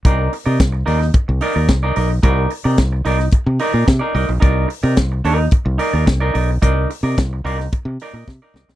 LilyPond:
<<
  \new Staff \with { instrumentName = "Clean electric guitar" } { \time 4/4 \key c \minor \tempo 4 = 109 <ees' bes' d''>8 r16 <ees' bes' d''>16 r8 <ees' bes' d''>16 r8. <ees' bes' d''>16 <ees' bes' d''>16 r16 <ees' bes' d''>16 <ees' bes' d''>16 r16 | <ees' bes' d''>8 r16 <ees' bes' d''>16 r8 <ees' bes' d''>16 r8. <ees' bes' d''>16 <ees' bes' d''>16 r16 <ees' bes' d''>16 <ees' bes' d''>16 r16 | <ees' bes' d''>8 r16 <ees' bes' d''>16 r8 <ees' bes' d''>16 r8. <ees' bes' d''>16 <ees' bes' d''>16 r16 <ees' bes' d''>16 <ees' bes' d''>16 r16 | <ees' bes' d''>8 r16 <ees' bes' d''>16 r8 <ees' bes' d''>16 r8. <ees' bes' d''>16 <ees' bes'>16 r16 <ees' bes' d''>16 <ees' bes' d''>16 r16 | }
  \new Staff \with { instrumentName = "Fingered electric bass" } { \clef bass \time 4/4 \key c \minor c,8 r16 c16 c,8 ees,8 r16 c,16 r16 ees,16 c,8 b,,8 | c,8 r16 c16 c,8 c,8 r16 c16 r16 bes,16 c16 r16 c,16 b,,16 | c,8 r16 c16 c,8 ees,8 r16 c,16 r16 ees,16 c,8 b,,8 | c,8 r16 c16 c,8 c,8 r16 c16 r16 bes,16 c16 r16 c,16 b,,16 | }
  \new DrumStaff \with { instrumentName = "Drums" } \drummode { \time 4/4 <hh bd>8 hho8 <hh bd sn>8 hho16 sn16 <hh bd>8 hho8 <hh bd sn>8 hho8 | <hh bd>8 hho8 <hh bd sn>8 hho16 sn16 <hh bd>8 hho8 <hh bd sn>8 hho8 | <hh bd>8 hho8 <hh bd sn>8 hho8 <hh bd>8 hho8 <hh bd sn>8 hho8 | <hh bd>8 hho8 <hh bd sn>8 hho16 sn16 <hh bd>8 hho8 <bd sn>8 sn16 sn16 | }
>>